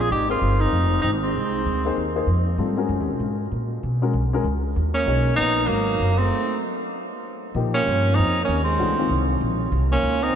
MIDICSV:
0, 0, Header, 1, 5, 480
1, 0, Start_track
1, 0, Tempo, 310398
1, 159, Time_signature, 4, 2, 24, 8
1, 16010, End_track
2, 0, Start_track
2, 0, Title_t, "Grand piano"
2, 0, Program_c, 0, 0
2, 450, Note_on_c, 0, 58, 64
2, 453, Note_on_c, 0, 63, 49
2, 461, Note_on_c, 0, 68, 51
2, 464, Note_on_c, 0, 72, 64
2, 1079, Note_off_c, 0, 58, 0
2, 1081, Note_off_c, 0, 63, 0
2, 1085, Note_off_c, 0, 68, 0
2, 1086, Note_off_c, 0, 72, 0
2, 2860, Note_on_c, 0, 58, 66
2, 2869, Note_on_c, 0, 63, 58
2, 2878, Note_on_c, 0, 68, 57
2, 2884, Note_on_c, 0, 72, 67
2, 3307, Note_off_c, 0, 58, 0
2, 3312, Note_off_c, 0, 63, 0
2, 3315, Note_off_c, 0, 68, 0
2, 3320, Note_off_c, 0, 72, 0
2, 3335, Note_on_c, 0, 63, 55
2, 3338, Note_on_c, 0, 58, 69
2, 3338, Note_on_c, 0, 68, 59
2, 3343, Note_on_c, 0, 72, 65
2, 3500, Note_off_c, 0, 63, 0
2, 3501, Note_off_c, 0, 58, 0
2, 3502, Note_off_c, 0, 68, 0
2, 3504, Note_off_c, 0, 72, 0
2, 3999, Note_on_c, 0, 55, 52
2, 4002, Note_on_c, 0, 65, 51
2, 4003, Note_on_c, 0, 60, 49
2, 4011, Note_on_c, 0, 69, 57
2, 4265, Note_off_c, 0, 55, 0
2, 4267, Note_off_c, 0, 60, 0
2, 4267, Note_off_c, 0, 65, 0
2, 4271, Note_off_c, 0, 69, 0
2, 4288, Note_on_c, 0, 56, 53
2, 4288, Note_on_c, 0, 66, 51
2, 4289, Note_on_c, 0, 61, 53
2, 4300, Note_on_c, 0, 70, 63
2, 5325, Note_off_c, 0, 56, 0
2, 5325, Note_off_c, 0, 61, 0
2, 5325, Note_off_c, 0, 66, 0
2, 5331, Note_off_c, 0, 70, 0
2, 6215, Note_on_c, 0, 61, 56
2, 6217, Note_on_c, 0, 56, 60
2, 6225, Note_on_c, 0, 66, 52
2, 6230, Note_on_c, 0, 70, 65
2, 6380, Note_off_c, 0, 61, 0
2, 6381, Note_off_c, 0, 56, 0
2, 6385, Note_off_c, 0, 66, 0
2, 6387, Note_off_c, 0, 70, 0
2, 6698, Note_on_c, 0, 61, 58
2, 6699, Note_on_c, 0, 56, 67
2, 6713, Note_on_c, 0, 66, 53
2, 6717, Note_on_c, 0, 70, 74
2, 6862, Note_off_c, 0, 56, 0
2, 6862, Note_off_c, 0, 61, 0
2, 6869, Note_off_c, 0, 66, 0
2, 6871, Note_off_c, 0, 70, 0
2, 7836, Note_on_c, 0, 70, 51
2, 7848, Note_on_c, 0, 63, 51
2, 7850, Note_on_c, 0, 68, 47
2, 7854, Note_on_c, 0, 73, 65
2, 9167, Note_off_c, 0, 70, 0
2, 9173, Note_off_c, 0, 63, 0
2, 9174, Note_off_c, 0, 68, 0
2, 9176, Note_off_c, 0, 73, 0
2, 11676, Note_on_c, 0, 53, 55
2, 11689, Note_on_c, 0, 58, 51
2, 11690, Note_on_c, 0, 63, 49
2, 11694, Note_on_c, 0, 67, 60
2, 13007, Note_off_c, 0, 53, 0
2, 13013, Note_off_c, 0, 58, 0
2, 13014, Note_off_c, 0, 63, 0
2, 13016, Note_off_c, 0, 67, 0
2, 13595, Note_on_c, 0, 52, 57
2, 13595, Note_on_c, 0, 57, 52
2, 13600, Note_on_c, 0, 66, 67
2, 13603, Note_on_c, 0, 62, 55
2, 13863, Note_off_c, 0, 52, 0
2, 13863, Note_off_c, 0, 57, 0
2, 13866, Note_off_c, 0, 66, 0
2, 13867, Note_off_c, 0, 62, 0
2, 13891, Note_on_c, 0, 51, 55
2, 13893, Note_on_c, 0, 56, 53
2, 13905, Note_on_c, 0, 60, 54
2, 13905, Note_on_c, 0, 65, 65
2, 14926, Note_off_c, 0, 51, 0
2, 14926, Note_off_c, 0, 56, 0
2, 14932, Note_off_c, 0, 60, 0
2, 14933, Note_off_c, 0, 65, 0
2, 16010, End_track
3, 0, Start_track
3, 0, Title_t, "Tenor saxophone"
3, 0, Program_c, 1, 66
3, 7, Note_on_c, 1, 68, 96
3, 168, Note_off_c, 1, 68, 0
3, 177, Note_on_c, 1, 67, 93
3, 444, Note_off_c, 1, 67, 0
3, 469, Note_on_c, 1, 65, 82
3, 928, Note_on_c, 1, 63, 84
3, 952, Note_off_c, 1, 65, 0
3, 1560, Note_off_c, 1, 63, 0
3, 1570, Note_on_c, 1, 63, 71
3, 1710, Note_off_c, 1, 63, 0
3, 1901, Note_on_c, 1, 60, 78
3, 3276, Note_off_c, 1, 60, 0
3, 7640, Note_on_c, 1, 61, 86
3, 8264, Note_off_c, 1, 61, 0
3, 8288, Note_on_c, 1, 63, 105
3, 8772, Note_on_c, 1, 58, 89
3, 8795, Note_off_c, 1, 63, 0
3, 9560, Note_on_c, 1, 60, 80
3, 9583, Note_off_c, 1, 58, 0
3, 10231, Note_off_c, 1, 60, 0
3, 11969, Note_on_c, 1, 61, 97
3, 12607, Note_on_c, 1, 63, 107
3, 12630, Note_off_c, 1, 61, 0
3, 13051, Note_off_c, 1, 63, 0
3, 13060, Note_on_c, 1, 61, 88
3, 13352, Note_off_c, 1, 61, 0
3, 13362, Note_on_c, 1, 60, 80
3, 14286, Note_off_c, 1, 60, 0
3, 15336, Note_on_c, 1, 61, 97
3, 15824, Note_on_c, 1, 63, 102
3, 15847, Note_off_c, 1, 61, 0
3, 16010, Note_off_c, 1, 63, 0
3, 16010, End_track
4, 0, Start_track
4, 0, Title_t, "Trombone"
4, 0, Program_c, 2, 57
4, 177, Note_on_c, 2, 63, 82
4, 444, Note_off_c, 2, 63, 0
4, 460, Note_on_c, 2, 60, 71
4, 946, Note_off_c, 2, 60, 0
4, 946, Note_on_c, 2, 60, 71
4, 1590, Note_off_c, 2, 60, 0
4, 1599, Note_on_c, 2, 60, 67
4, 1732, Note_off_c, 2, 60, 0
4, 1874, Note_on_c, 2, 56, 69
4, 3262, Note_off_c, 2, 56, 0
4, 7633, Note_on_c, 2, 58, 72
4, 8260, Note_off_c, 2, 58, 0
4, 8296, Note_on_c, 2, 59, 77
4, 8758, Note_on_c, 2, 54, 68
4, 8782, Note_off_c, 2, 59, 0
4, 9559, Note_on_c, 2, 57, 70
4, 9582, Note_off_c, 2, 54, 0
4, 10231, Note_off_c, 2, 57, 0
4, 11972, Note_on_c, 2, 58, 78
4, 12594, Note_on_c, 2, 60, 84
4, 12617, Note_off_c, 2, 58, 0
4, 13037, Note_off_c, 2, 60, 0
4, 13046, Note_on_c, 2, 58, 74
4, 13341, Note_off_c, 2, 58, 0
4, 13350, Note_on_c, 2, 56, 76
4, 14280, Note_off_c, 2, 56, 0
4, 15337, Note_on_c, 2, 58, 84
4, 15842, Note_on_c, 2, 60, 88
4, 15865, Note_off_c, 2, 58, 0
4, 16010, Note_off_c, 2, 60, 0
4, 16010, End_track
5, 0, Start_track
5, 0, Title_t, "Upright bass"
5, 0, Program_c, 3, 32
5, 155, Note_on_c, 3, 32, 74
5, 622, Note_off_c, 3, 32, 0
5, 641, Note_on_c, 3, 31, 77
5, 1105, Note_off_c, 3, 31, 0
5, 1121, Note_on_c, 3, 29, 78
5, 1586, Note_off_c, 3, 29, 0
5, 1613, Note_on_c, 3, 32, 81
5, 2072, Note_off_c, 3, 32, 0
5, 2081, Note_on_c, 3, 36, 76
5, 2545, Note_off_c, 3, 36, 0
5, 2561, Note_on_c, 3, 38, 80
5, 3025, Note_off_c, 3, 38, 0
5, 3035, Note_on_c, 3, 39, 77
5, 3495, Note_off_c, 3, 39, 0
5, 3504, Note_on_c, 3, 41, 79
5, 3976, Note_off_c, 3, 41, 0
5, 3988, Note_on_c, 3, 44, 75
5, 4455, Note_off_c, 3, 44, 0
5, 4464, Note_on_c, 3, 42, 78
5, 4641, Note_off_c, 3, 42, 0
5, 4641, Note_on_c, 3, 39, 51
5, 4784, Note_off_c, 3, 39, 0
5, 4793, Note_on_c, 3, 35, 51
5, 4934, Note_off_c, 3, 35, 0
5, 4943, Note_on_c, 3, 44, 74
5, 5416, Note_off_c, 3, 44, 0
5, 5437, Note_on_c, 3, 46, 74
5, 5903, Note_off_c, 3, 46, 0
5, 5925, Note_on_c, 3, 47, 77
5, 6381, Note_off_c, 3, 47, 0
5, 6390, Note_on_c, 3, 35, 79
5, 6860, Note_off_c, 3, 35, 0
5, 6866, Note_on_c, 3, 37, 80
5, 7338, Note_off_c, 3, 37, 0
5, 7360, Note_on_c, 3, 39, 83
5, 7816, Note_off_c, 3, 39, 0
5, 7825, Note_on_c, 3, 35, 85
5, 8297, Note_off_c, 3, 35, 0
5, 8316, Note_on_c, 3, 34, 78
5, 8775, Note_off_c, 3, 34, 0
5, 8784, Note_on_c, 3, 32, 80
5, 9257, Note_off_c, 3, 32, 0
5, 9274, Note_on_c, 3, 30, 85
5, 9742, Note_off_c, 3, 30, 0
5, 11667, Note_on_c, 3, 46, 85
5, 12138, Note_off_c, 3, 46, 0
5, 12159, Note_on_c, 3, 43, 88
5, 12624, Note_off_c, 3, 43, 0
5, 12654, Note_on_c, 3, 41, 85
5, 13112, Note_off_c, 3, 41, 0
5, 13121, Note_on_c, 3, 39, 89
5, 13581, Note_off_c, 3, 39, 0
5, 13590, Note_on_c, 3, 37, 82
5, 14054, Note_off_c, 3, 37, 0
5, 14063, Note_on_c, 3, 36, 89
5, 14536, Note_off_c, 3, 36, 0
5, 14548, Note_on_c, 3, 34, 88
5, 15018, Note_off_c, 3, 34, 0
5, 15028, Note_on_c, 3, 36, 97
5, 15494, Note_off_c, 3, 36, 0
5, 15503, Note_on_c, 3, 37, 81
5, 15975, Note_off_c, 3, 37, 0
5, 16010, End_track
0, 0, End_of_file